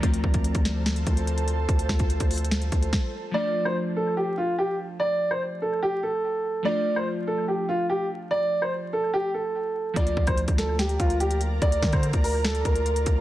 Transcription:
0.00 D2 F3 A3 C4 F4 A4 C5 A5, kick, closed hi-hat
0.06 F4
0.14 closed hi-hat
0.24 D2, kick
0.34 kick, closed hi-hat
0.44 closed hi-hat
0.55 D2, kick, closed hi-hat
0.65 snare, closed hi-hat
0.86 snare, closed hi-hat
0.96 closed hi-hat
1.07 D2, kick, closed hi-hat
1.17 closed hi-hat
1.27 closed hi-hat
1.38 closed hi-hat
1.48 closed hi-hat
1.69 D2, kick, closed hi-hat
1.79 closed hi-hat
1.89 D2, kick, snare
1.99 kick, closed hi-hat
2.10 closed hi-hat
2.20 D2, kick, closed hi-hat
2.31 closed hi-hat, open hi-hat
2.38 closed hi-hat
2.44 closed hi-hat
2.51 snare, closed hi-hat
2.62 closed hi-hat
2.72 D2, kick, closed hi-hat
2.82 closed hi-hat
2.93 kick, snare
3.31 F3 A3 D4 D5
3.37 F4
3.65 C5
3.96 A4
4.17 G4
4.38 F4
4.58 G4
5.00 D5
5.31 C5
5.62 A4
5.83 G4
6.03 A4
6.62 F3 A3 D4 D5
6.68 F4
6.96 C5
7.27 A4
7.48 G4
7.69 F4
7.90 G4
8.31 D5
8.62 C5
8.93 A4
9.14 G4
9.34 A4
9.94 D2 F3 A#3 D4 F4 A#4 D5 A#5, kick, closed hi-hat
9.99 F4
10.07 closed hi-hat
10.17 D2, kick
10.27 C5, kick, closed hi-hat
10.37 closed hi-hat
10.48 D2, kick, closed hi-hat
10.58 A4, snare, closed hi-hat
10.79 G4, snare, closed hi-hat
10.89 closed hi-hat
11.00 D2 F4, kick, closed hi-hat
11.10 closed hi-hat
11.20 G4, closed hi-hat
11.31 closed hi-hat
11.41 closed hi-hat
11.62 D2 D5, kick, closed hi-hat
11.72 closed hi-hat
11.82 D3, kick, snare
11.92 C5, kick, closed hi-hat
12.03 closed hi-hat
12.13 D2, kick, closed hi-hat
12.24 A#4, open hi-hat
12.45 A4, snare, closed hi-hat
12.55 closed hi-hat
12.65 D2 A#4, kick, closed hi-hat
12.76 closed hi-hat
12.86 closed hi-hat
12.96 closed hi-hat
13.06 D2, kick, closed hi-hat

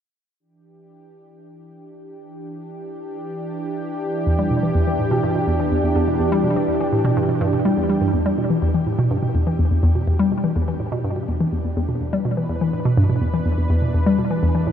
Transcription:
0.40 E3 D4 G4
4.27 E2
4.39 G3
4.51 B2
4.63 E3
4.75 E2
4.87 E3
4.99 A2
5.11 B2
5.23 G2
5.35 B2
5.48 E2
5.60 E3
5.72 E2
5.84 E2
5.96 E2
6.08 B2
6.20 E2
6.32 G3
6.44 B2
6.56 E3
6.68 E2
6.80 E3
6.93 A2
7.05 B2
7.17 G2
7.29 B2
7.41 G2
7.53 B2
7.65 G3
7.77 E2
7.89 G3
8.01 G2
8.14 E2 E3 D4 G4
8.26 G3
8.38 B2
8.50 E3
8.62 E2
8.74 E3
8.86 A2
8.99 B2
9.11 G2
9.23 B2
9.35 E2
9.47 E3
9.59 E2
9.71 E2
9.83 E2
9.95 B2
10.07 E2
10.19 G3
10.32 B2
10.44 E3
10.56 E2
10.68 E3
10.80 A2
10.92 B2
11.04 G2
11.16 B2
11.28 E2
11.41 E3
11.53 E2
11.65 E2
11.77 E2
11.89 B2
12.01 E2 B4
12.13 G3
12.25 B2
12.37 E3
12.49 E2
12.61 E3
12.73 A2
12.85 B2
12.97 G2
13.10 B2
13.22 E2
13.34 E3
13.46 E2
13.58 E2
13.70 E2
13.82 B2
13.94 E2
14.06 G3
14.19 B2
14.31 E3
14.43 E2
14.55 E3
14.67 A2

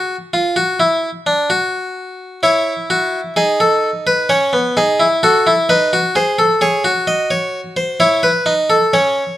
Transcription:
Already playing: F#4
0.34 F4
0.56 F#4
0.80 E4
1.27 D4
1.50 F#4
2.43 E4 C#5
2.90 F#4
3.36 D#4 G#4
3.60 A4
4.07 B4
4.29 C#4 C#5
4.53 B3
4.77 D#4 G#4
5.00 E4
5.23 F#4 A4
5.47 E4
5.69 D#4 B4
5.93 F#4
6.16 G#4 C5
6.39 A4
6.61 G#4 C#5
6.84 F#4
7.07 D#5
7.31 C#5
7.77 C5
8.00 E4 C#5
8.23 B4
8.46 D#4
8.70 A4
8.93 C#4 C#5

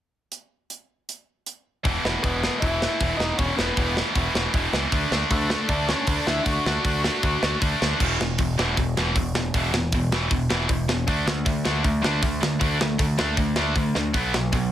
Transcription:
0.32 closed hi-hat
0.70 closed hi-hat
1.09 closed hi-hat
1.46 closed hi-hat
1.84 E1 E2 B2 E3, kick, open hi-hat
2.04 E1 E2 B2 E3, snare
2.23 E1 E2 B2 E3 B3 B4, kick, open hi-hat
2.42 E2 B2 E3, snare
2.60 E1 E2 B2 E3 E4 E5, kick, open hi-hat
2.81 E2 B2 E3, snare
3.01 E1 E2 B2 E3, kick, open hi-hat
3.17 E1 E2 B2 D#4 D#5, snare
3.21 E3
3.38 E1 E2 B2 E3 C#4 C#5, kick, open hi-hat
3.57 E1 E2 B2 E3 B3 B4, snare
3.77 E1 E2 B2 E3, kick, open hi-hat
3.97 E2 B2 E3, snare
4.15 E1 E2 B2 E3, kick, open hi-hat
4.34 E1 E2 B2 E3, snare
4.54 E1 E2 B2 E3, kick, open hi-hat
4.73 C#2 E2 B2 E3, snare
4.92 D2 D3 A3 D4, kick, open hi-hat
5.11 D2 D3 A3 D4, snare
5.31 D2 D3 A3 D4 A4, kick, open hi-hat
5.49 D3 A3 D4, snare
5.68 D2 D3 A3 D4 D5, kick, open hi-hat
5.88 D3 A3 C#4 D4 C#5, snare
6.07 D2 D3 A3 D4 D5, kick, open hi-hat
6.27 D2 D3 A3 D4 E4 E5, snare
6.45 D2 D3 A3 D4 F#4 F#5, kick, open hi-hat
6.65 D2 D3 A3 D4, snare
6.83 D2 D3 A3 D4, kick, open hi-hat
7.03 D3 A3 D4, snare
7.22 D2 D3 A3 D4, kick, open hi-hat
7.42 D2 D3 A3 D4, snare
7.60 D2 D3 A3 D4, kick, open hi-hat
7.80 D2 D3 A3 D4, snare
7.99 E1 E2 B2 E3, kick, crash
8.20 E1 E2 B2, snare
8.38 E1 E2 B2, kick, open hi-hat
8.58 E1 E2 B2 E3, snare
8.77 E1 E2 B2, kick, open hi-hat
8.97 E1 E2 B2 E3, snare
9.16 E1 E2 B2, kick, open hi-hat
9.34 E1 E2 B2, snare
9.54 E1 E2 B2 E3, kick, open hi-hat
9.73 E1 E2 B2, snare
9.92 E1 E2 B2, kick, open hi-hat
10.11 E1 E2 B2 E3, snare
10.31 E1 E2 B2, kick, open hi-hat
10.50 E1 E2 B2 E3, snare
10.69 E1 E2 B2, kick, open hi-hat
10.88 E1 E2 B2, snare
11.07 D2 D3 A3 D4, kick, open hi-hat
11.26 D2 D3 A3, snare
11.45 D2 D3 A3, kick, open hi-hat
11.65 D2 D3 A3 D4, snare
11.84 D2 D3 A3, kick, open hi-hat
12.02 D2 D3 A3 D4, snare
12.22 D2 D3 A3, kick, open hi-hat
12.41 D2 D3 A3, snare
12.60 D2 D3 A3 D4, kick, open hi-hat
12.80 D2 D3 A3, snare
12.98 D2 D3 A3, kick, open hi-hat
13.18 D2 D3 A3 D4, snare
13.37 D2 D3 A3, kick, open hi-hat
13.56 D2 D3 A3 D4, snare
13.76 D2 D3 A3, kick, open hi-hat
13.95 D2 D3 A3, snare
14.13 B1 B2 F#3 B3, kick, open hi-hat
14.34 B1 B2 F#3, snare
14.52 B1 B2 F#3, kick, open hi-hat

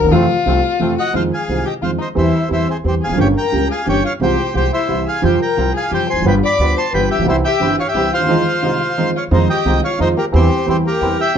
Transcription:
Already playing: A#4
0.00 D2 D#2
0.06 E2
0.11 F2 C3 F3 A3 C4 F4
0.46 C2 C3 F3 A3 C4 F4
0.79 F2 C3 F3 A3 C4 F4
0.98 F#4 D#5 F#5
1.13 F2 D#3 F3 G#3 C4 F4 C5 F5
1.32 G#4 F5 G#5
1.48 C2 C3 D#3 G#3 C4 F4
1.65 G4 D#5 G5
1.82 F2 D#3 F3 G#3 C4 F4 C5 F5
1.99 D#4 C5 D#5
2.15 E2 E3 G3 C4 E4 G4 C5 E5
2.49 E2 E3 G3 C4 E4 G4 E5
2.53 C5
2.68 C4 G#4 C5
2.83 E2 E3 G3 C4 G4
2.88 G4 C5
3.02 E2 G#4 F5 G#5
3.06 E1 F1 F2
3.13 F#1 F#2 C#3
3.17 G1 G2 G3 A#3 G4 C#5 G5
3.35 A#4 G5 A#5
3.52 C#2 C#3 G3 A#3 G4
3.70 G#4 F5 G#5
3.86 G1 G2 C#3 G3 A#3 G4 C#5 G5
4.04 F4 C#5 F5
4.20 C2 C3 F3 G#3 F4 G4 C5 G5
4.54 C2 C3 F3 G#3 F4 G4 C5 G5
4.72 E4 C5 E5
4.88 C2 C3 E3 G3 E4
5.06 G#4 F5 G#5
5.22 F2 C3 F3 G3 C4 F4 G4 C5 G5
5.41 A#4 G5 A#5
5.57 C2 C3 F3 G3 C4 F4
5.74 G#4 F5 G#5
5.91 F2 C3 F3 G3 C4 F4 G4 C5 G5
6.09 E1 E2 C5 G#5 C6
6.16 F1 F2
6.21 F#1 G1 F#2
6.25 G1 G2 D3 G3 B3 F4 B4 G5 B5
6.43 D5 B5 D6
6.59 D2 D3 G3 B3 F4
6.76 C5 A5 C6
6.93 G1 G2 D3 G3 B3 F4 B4 G5 B5
7.11 A1 G4 E5 G5
7.18 A#1 B1
7.23 B1 C2 C3 E3 G3 C4 G4
7.27 C2 G3 C4 E4 C5 E5
7.44 G4 E5 G5
7.60 G1 G2 E3 G3 C4 E4 G4
7.79 F4 C#5 F5
7.87 G4 E5 G5
7.94 C2 C3 E3 G3 C4 E4 G4
8.12 D2 F4 C5 F5
8.20 D#2
8.24 E2
8.28 F2 D#3 F3 G#3 C4 D#4 F4
8.62 C2 C3 D#3 G#3 C4 D#4 F4
8.97 F2 D#3 F3 G#3 C4 D#4 F4
9.16 F4 C#5 F5
9.31 F2 D#3 F3 G#3 C4 D#4 F4 C5 D#5
9.50 G4 D#5 G5
9.65 C2 C3 D#3 G#3 C4 D#4 F4
9.85 F4 C#5 F5
9.99 F2 D#3 F3 G#3 C4 D#4 F4 C5 D#5
10.17 A#3 G4 A#4
10.32 E2 E3 G3 C4 E4 G4 C5
10.66 E2 E3 G3 C4 E4 G4
10.70 G4 C5
10.84 A#3 G4 A#4
11.01 E2 E3 G3 C4 E4 G4
11.17 G4 E5 G5
11.35 A#3

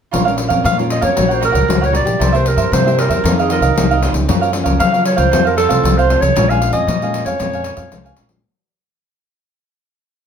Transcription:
0.11 A#1 A#2 A#3 C#4 F4 A#4 C#5 F5, pandeiro
0.25 A#3 C#4 F4 A#4 C#5 F5, pandeiro
0.37 muted cavaquinho stroke, pandeiro
0.48 F2 A#4 C#5 F5, pandeiro
0.64 F2 A#2 F4 A#4 C#5 F5, pandeiro
0.77 A#3 C#4 F4 A#4 C#5 F5, pandeiro
0.90 D#5, pandeiro
1.01 F2 A#4 C#5 F5, pandeiro
1.15 A#1 A#2 A#3 C#4 F#4 A#4 C#5 F#5, pandeiro
1.28 A#4 C#5 F#5, pandeiro
1.33 C5
1.40 F#4 A#4 C#5 F#5, pandeiro
1.52 C#2 A#4 C#5 F#5, pandeiro
1.68 C#2 A#2 A#3 C#4 F#4, pandeiro
1.81 A#4 C#5 F#5, pandeiro
1.92 A#3 C#4 F#4 A#4 C#5 D5 F#5, pandeiro
2.04 A#1 A#3 E4 G4, muted cavaquinho stroke, pandeiro
2.19 C2 C3 E4 A#4 C5 E5, pandeiro
2.32 A#3 E4 G4 A#4 C5 E5, pandeiro
2.45 A#4, muted cavaquinho stroke, pandeiro
2.56 G2 A#4 C5 E5, pandeiro
2.72 G2 C3 E4 A#4 C5 E5, pandeiro
2.85 A#3 E4 G4 A#4 C5 E5, pandeiro
2.99 A#4, pandeiro
3.08 E2 A#4 C5 E5, pandeiro
3.24 F2 D#3 A#3 C4 F4 A#4 D#5 F5, pandeiro
3.34 A#4
3.39 G#4 A#4 D#5 F5, pandeiro
3.50 F4 A#4 D#5 F5, pandeiro
3.60 C2 A#4 D#5 F5, pandeiro
3.76 C2 C3 D#3 A#3 C4, pandeiro
3.91 A#4 D#5 F5, pandeiro
4.01 D#3 A#3 C4 F4 A#4 D#5 F5, pandeiro
4.13 C#2, muted cavaquinho stroke, pandeiro
4.28 F#2 F3 A#3 C#4 F#4 A#4 C#5 F5, pandeiro
4.41 A#4 C#5 F5, pandeiro
4.52 F3 A#3 C#4, muted cavaquinho stroke, pandeiro
4.64 C#2 A#4 C#5 F5, pandeiro
4.79 C#3 F#3 F#4 A#4 C#5 F5, pandeiro
4.92 F3 A#3 C#4 A#4 C#5 F5, pandeiro
5.05 C#5, pandeiro
5.16 C#2 A#4 C5 C#5 F5, pandeiro
5.31 F2 F3 A3 C4 F4 A4 C5 F5, pandeiro
5.45 A4 A#4 C5 F5, pandeiro
5.57 F4 A4 C5 F5, pandeiro
5.69 C2 F3 A3 C4 A4 C5 F5, pandeiro
5.83 C2 C3, pandeiro
5.97 A4 C5 F5, pandeiro
6.09 F3 A3 C4 F4 A4 C5 F5, pandeiro
6.20 C2 C#5, muted cavaquinho stroke, pandeiro
6.36 A#1 A#2 F3 G#3 C#4 A#4 C#5 F5 G#5, pandeiro
6.49 F3 G#3 C#4 C#5 F5 G#5, pandeiro
6.61 muted cavaquinho stroke, pandeiro
6.72 F2 C#5 D#5 F5 G#5, pandeiro
6.87 F2 A#2 A#4 C#5 F5 G#5, pandeiro
7.01 F3 G#3 C#4 C#5 F5 G#5, pandeiro
7.14 pandeiro
7.24 F2 C#5 F5 G#5, pandeiro
7.39 F2 A#2 F3 G#3 C#4 A#4 C#5 F5 G#5, pandeiro
7.53 C#5 F5 G#5, pandeiro
7.64 A#4 C#5 F5 G#5, pandeiro
7.76 F2 C#5 F5, pandeiro
7.91 C2 F2 F3 G#3 C#4, pandeiro
8.05 C#5 F5 G#5, pandeiro
8.16 A#1 F3 G#3 C#4 A#4 C#5 F5 G#5, pandeiro
8.28 F3 G#3 C#4, muted cavaquinho stroke, pandeiro

